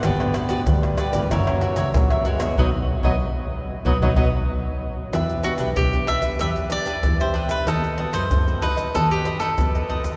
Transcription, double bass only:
\new Staff \with { instrumentName = "Double bass" } { \clef bass \time 4/4 \key e \minor \tempo 4 = 94 g,,8 r8 d,8. g,,16 fis,,8. cis,16 ais,,4 | b,,16 r8 b,,16 r4 b,,16 b,,16 b,,16 r4 r16 | e,8 r16 b,,16 b,,4 e,4 e,4 | dis,8 r16 fis,16 fis,4 dis,4 f,4 | }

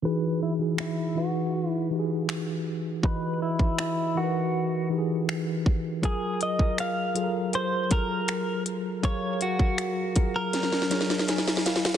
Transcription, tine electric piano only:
\new Staff \with { instrumentName = "Tine electric piano" } { \time 4/4 \key e \major \tempo 4 = 80 << { r1 | r1 | r1 | r2. gis''8 eis''8 | } \\ { <e dis' fis' gis'>8. <e dis' fis' gis'>8. <e dis' fis' b'>8. r16 <e dis' fis' g' gis'>4~ <e dis' fis' g' gis'>16 r16 | <e fis' b' dis''>4~ <e fis' b' dis''>16 r16 <e dis' fis' ais' b'>8. r16 <e dis' fis' g' gis'>4~ <e dis' fis' g' gis'>16 r16 | <fis eis' gis' ais'>8. <fis eis' gis' ais'>8. <fis eis' gis' a' ais'>8. r16 <fis eis' gis' a' ais'>4~ <fis eis' gis' a' ais'>16 r16 | <fis gis' ais' eis''>4~ <fis gis' ais' eis''>16 r16 <fis eis' gis' ais'>8. r16 <fis eis' gis' cis''>4~ <fis eis' gis' cis''>16 r16 | } >> }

